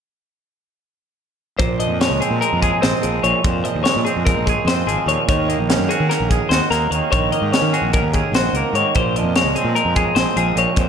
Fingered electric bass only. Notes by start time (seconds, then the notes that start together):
1.59 A#1
1.88 F2
2.10 C#2
2.31 A#2
2.53 F2
2.83 A#1
3.04 A#1
3.24 A#1
3.45 F2
3.75 D#2
3.96 A#2
4.16 F2
4.36 A#1
4.65 F2
4.87 G#1
5.06 D#2
5.29 D#2
5.59 A#1
5.79 F#2
6.00 D#3
6.20 A#1
6.50 D#2
6.71 D#2
6.91 D#2
7.12 A#1
7.42 G#2
7.62 D#3
7.82 A#1
8.02 D#2
8.32 A#1
8.53 C#2
8.73 G#2
8.96 A#1
9.23 F2
9.44 C#2
9.64 A#2
9.85 F2
10.16 A#1
10.36 A#1
10.56 A#1
10.77 F2